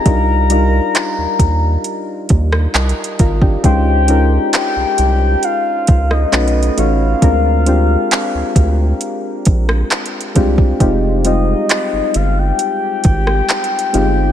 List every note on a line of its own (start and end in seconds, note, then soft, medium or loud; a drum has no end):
0.00 2.30 A#5 loud
0.05 0.80 C2 loud
0.05 0.41 G3 medium
0.05 0.41 D4 medium
0.05 0.42 D#4 medium
0.05 0.42 F4 medium
0.05 0.42 A#4 medium
0.05 kick medium
0.05 closed hi-hat medium
0.50 1.93 G3 medium
0.50 1.94 D4 medium
0.50 1.94 D#4 medium
0.50 1.94 F4 medium
0.50 1.95 A#4 medium
0.50 closed hi-hat medium
0.95 clap loud
0.95 closed hi-hat medium
1.18 1.27 D#2 soft
1.39 1.77 D#2 loud
1.39 kick loud
1.39 closed hi-hat medium
1.84 closed hi-hat medium
2.29 2.67 D#2 medium
2.29 kick loud
2.29 closed hi-hat medium
2.52 cross-stick loud
2.74 2.93 C2 medium
2.74 3.17 A#4 medium
2.74 3.17 D#5 medium
2.74 clap loud
2.74 closed hi-hat soft
2.89 closed hi-hat medium
3.04 closed hi-hat medium
3.19 3.57 G#1 loud
3.19 3.41 F4 medium
3.19 3.41 A#4 medium
3.19 kick loud
3.19 closed hi-hat medium
3.42 3.85 D4 medium
3.42 3.84 G4 medium
3.42 kick loud
3.63 4.38 C#2 loud
3.63 3.99 G#3 medium
3.63 4.00 C#4 medium
3.63 4.00 D#4 medium
3.63 4.00 F4 medium
3.63 4.01 C5 medium
3.63 4.50 G5 loud
3.63 kick medium
3.63 closed hi-hat medium
4.08 5.51 G#3 medium
4.08 5.52 C#4 medium
4.08 5.52 D#4 medium
4.08 5.52 F4 medium
4.08 5.53 A#4 medium
4.08 closed hi-hat medium
4.53 5.46 G5 loud
4.53 clap loud
4.53 closed hi-hat medium
4.76 4.85 C2 medium
4.98 5.36 C2 loud
4.98 closed hi-hat medium
5.43 6.12 F5 loud
5.43 closed hi-hat medium
5.87 6.25 C#2 medium
5.87 kick loud
5.87 closed hi-hat medium
6.11 6.80 D#5 loud
6.11 cross-stick medium
6.32 6.70 B1 loud
6.32 6.68 A3 medium
6.32 6.68 C#4 medium
6.32 6.69 D#4 medium
6.32 6.69 F#4 medium
6.32 6.69 B4 medium
6.32 clap loud
6.32 closed hi-hat soft
6.48 closed hi-hat soft
6.63 closed hi-hat medium
6.77 7.15 A1 medium
6.77 7.13 A3 medium
6.77 7.13 C#4 medium
6.77 7.13 D#4 medium
6.77 7.14 F#4 medium
6.77 7.14 C#5 medium
6.77 9.46 F5 loud
6.77 closed hi-hat medium
7.22 7.96 D2 loud
7.22 7.58 G#3 medium
7.22 7.58 C4 medium
7.22 7.58 D4 medium
7.22 7.59 F4 medium
7.22 7.59 A#4 medium
7.22 kick loud
7.22 closed hi-hat medium
7.66 9.10 G#3 medium
7.66 9.10 C4 medium
7.66 9.10 D4 medium
7.66 9.11 F4 medium
7.66 9.11 G4 medium
7.66 closed hi-hat medium
8.11 clap loud
8.11 closed hi-hat medium
8.35 8.43 D2 medium
8.56 8.93 D2 loud
8.56 kick loud
8.56 closed hi-hat medium
9.01 closed hi-hat medium
9.45 9.84 A#1 loud
9.45 kick loud
9.45 closed hi-hat medium
9.69 cross-stick loud
9.91 clap loud
9.91 closed hi-hat medium
10.06 closed hi-hat medium
10.21 closed hi-hat medium
10.35 10.73 C2 loud
10.35 10.71 G#3 medium
10.35 10.71 C4 medium
10.35 10.72 D4 medium
10.35 10.72 F4 medium
10.35 10.72 G4 loud
10.35 kick loud
10.35 closed hi-hat medium
10.58 kick medium
10.79 11.55 F1 loud
10.79 11.16 G#3 medium
10.79 11.16 C4 medium
10.79 11.16 D#4 medium
10.79 11.17 F4 medium
10.79 11.17 G4 loud
10.79 kick loud
10.79 closed hi-hat medium
11.24 11.31 G3 medium
11.24 12.68 C4 medium
11.24 12.68 D#4 medium
11.24 12.69 F4 medium
11.24 12.69 G4 medium
11.24 12.17 D#5 medium
11.24 closed hi-hat medium
11.31 12.71 G#3 medium
11.69 clap loud
11.69 closed hi-hat medium
11.93 12.02 G1 medium
12.14 12.52 G1 loud
12.14 12.40 F5 medium
12.14 closed hi-hat medium
12.38 14.32 G5 loud
12.59 closed hi-hat medium
13.04 13.42 G#1 medium
13.04 kick loud
13.04 closed hi-hat medium
13.27 cross-stick medium
13.49 clap loud
13.49 closed hi-hat medium
13.64 closed hi-hat medium
13.79 closed hi-hat medium
13.93 14.31 G1 medium
13.93 14.29 G#3 medium
13.93 14.29 C4 medium
13.93 14.30 D#4 medium
13.93 14.30 F4 medium
13.93 14.30 G4 loud
13.93 closed hi-hat medium